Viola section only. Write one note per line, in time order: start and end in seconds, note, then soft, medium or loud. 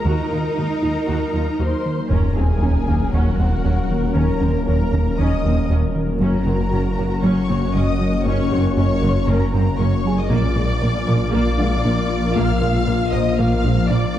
0.00 1.87 A#4 soft
0.05 0.29 F#4 soft
0.31 0.39 F4 soft
0.56 0.64 F#4 soft
0.82 0.90 D#4 soft
1.07 1.31 F#4 soft
1.34 1.42 F4 soft
1.59 1.67 F#4 soft
2.11 2.34 C#4 soft
2.11 6.17 A#4 soft
2.36 2.44 C4 soft
2.61 2.69 C#4 soft
2.88 2.96 A#3 soft
3.13 3.37 C#4 soft
3.39 3.47 C4 soft
3.64 3.72 C#4 soft
4.16 4.40 C#4 soft
4.42 4.50 C4 soft
4.67 4.75 C#4 soft
4.93 5.01 A#3 soft
5.19 5.42 C#4 medium
5.45 5.53 C4 soft
5.70 5.78 C#4 soft
6.21 6.45 C#4 soft
6.21 10.31 F#4 soft
6.47 6.55 C4 soft
6.74 6.82 C#4 soft
6.99 7.07 A#3 soft
7.23 7.47 C#4 medium
7.49 7.57 C4 soft
7.75 7.83 C#4 soft
8.27 8.50 C#4 medium
8.53 8.61 C4 soft
8.77 8.85 C#4 soft
9.03 9.11 A#3 soft
9.28 9.52 C#4 medium
9.54 9.62 C4 medium
9.79 9.87 C#4 soft
10.30 10.55 A#3 medium
10.30 14.19 F4 medium
10.57 10.65 G#3 soft
10.82 10.90 A#3 soft
11.07 11.15 F3 soft
11.33 11.57 A#3 medium
11.59 11.67 G#3 soft
11.85 11.93 A#3 soft
12.36 12.60 A#3 medium
12.62 12.70 G#3 soft
12.87 12.95 A#3 soft
13.12 13.20 F3 soft
13.38 13.62 A#3 medium
13.64 13.72 G#3 medium
13.90 13.98 A#3 soft